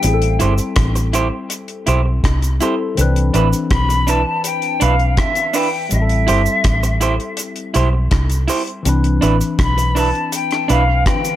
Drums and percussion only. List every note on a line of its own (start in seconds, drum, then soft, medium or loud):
0.03 closed hi-hat medium
0.03 cabasa medium
0.22 closed hi-hat medium
0.40 closed hi-hat medium
0.40 cabasa soft
0.58 closed hi-hat soft
0.58 cabasa medium
0.76 kick loud
0.76 cross-stick loud
0.76 closed hi-hat loud
0.95 closed hi-hat soft
0.95 cabasa soft
1.13 closed hi-hat medium
1.13 cabasa medium
1.50 closed hi-hat medium
1.50 cabasa medium
1.68 closed hi-hat soft
1.87 closed hi-hat medium
1.87 cabasa soft
2.24 kick loud
2.24 cross-stick loud
2.24 closed hi-hat medium
2.42 closed hi-hat soft
2.42 cabasa soft
2.60 closed hi-hat medium
2.60 cabasa medium
2.97 closed hi-hat medium
2.97 cabasa medium
3.16 closed hi-hat soft
3.34 closed hi-hat medium
3.34 cabasa soft
3.53 closed hi-hat soft
3.53 cabasa medium
3.71 kick loud
3.71 cross-stick loud
3.71 closed hi-hat medium
3.90 closed hi-hat soft
3.90 cabasa soft
4.08 closed hi-hat medium
4.08 cabasa medium
4.44 closed hi-hat medium
4.44 cabasa medium
4.62 closed hi-hat soft
4.81 closed hi-hat medium
4.81 cabasa soft
4.99 closed hi-hat soft
5.17 kick loud
5.17 cross-stick loud
5.17 closed hi-hat medium
5.35 closed hi-hat soft
5.35 cabasa medium
5.53 open hi-hat medium
5.53 cabasa medium
5.91 closed hi-hat loud
5.91 cabasa medium
6.09 closed hi-hat soft
6.28 closed hi-hat medium
6.28 cabasa soft
6.46 cabasa medium
6.64 kick loud
6.64 cross-stick loud
6.64 closed hi-hat loud
6.83 closed hi-hat medium
6.83 cabasa soft
7.01 closed hi-hat medium
7.01 cabasa medium
7.20 closed hi-hat soft
7.37 closed hi-hat medium
7.37 cabasa medium
7.56 closed hi-hat soft
7.74 closed hi-hat medium
7.74 cabasa soft
8.11 kick loud
8.11 cross-stick loud
8.11 closed hi-hat medium
8.30 closed hi-hat medium
8.30 cabasa medium
8.48 open hi-hat medium
8.48 cabasa medium
8.67 closed hi-hat soft
8.85 closed hi-hat loud
8.85 cabasa medium
9.04 closed hi-hat soft
9.22 closed hi-hat medium
9.22 cabasa soft
9.41 closed hi-hat soft
9.41 cabasa medium
9.59 kick loud
9.59 cross-stick loud
9.59 closed hi-hat medium
9.78 closed hi-hat medium
9.78 cabasa soft
9.96 open hi-hat soft
9.96 cabasa medium
10.15 closed hi-hat soft
10.32 closed hi-hat medium
10.32 cabasa medium
10.51 cross-stick medium
10.51 closed hi-hat soft
10.69 closed hi-hat medium
10.69 cabasa soft
11.06 kick loud
11.06 cross-stick loud
11.06 closed hi-hat medium
11.25 closed hi-hat medium
11.25 cabasa medium